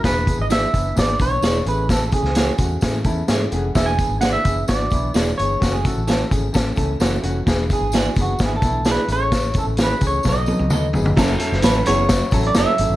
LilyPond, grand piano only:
\new Staff \with { instrumentName = "Grand piano" } { \time 4/4 \key e \mixolydian \tempo 4 = 129 <e b d' gis'>8 <e b d' gis'>8 <e b d' gis'>8 <e b d' e'>8 <e b d' gis'>8 <e b d' b'>8 <e b d' gis'>8 <e a cis' gis'>8~ | <e a cis' gis'>8 <e a cis' gis'>8 <e a cis' fis'>8 <e a cis' fis'>8 <e a cis' gis'>8 <e a cis' e' a''>8 <e a cis' gis' gis''>8 <e a cis' gis' fis''>8 | <e b d' gis'>8 <e b d' gis'>8 <e b d' gis'>8 <e b d' gis'>8 <e b d' fis'>8 <e b d' e'>8 <e b d' gis'>8 <e b d' gis'>8 | <e a cis' fis'>8 <e a cis' fis'>8 <e a cis' fis'>8 <e a cis' gis'>8 <e a cis' a'>8 <e a cis' a'>8 <e a cis' fis'>8 <e a cis' fis'>8 |
<e b d' gis'>8 <e b d' gis'>8 <e b d' fis'>8 <e b d' gis'>8 <e b d' e'>8 <e b d' e'>8 <e b d' gis'>8 <e a cis' gis'>8~ | <e a cis' gis'>8 <e a cis' a'>8 <e a cis' gis'>8 <e a cis' gis'>8 <fis b dis' a'>8 <fis b dis' a'>8 <fis b dis' a'>8 <fis b dis' gis'>8 | <fis cis' e' a'>8 <fis cis' e' a'>8 <fis cis' e' a'>8 <fis cis' e' gis'>8 <fis cis' e' fis'>8 <fis cis' e' a'>8 <fis cis' e' a'>8 <fis cis' e' a'>8 | }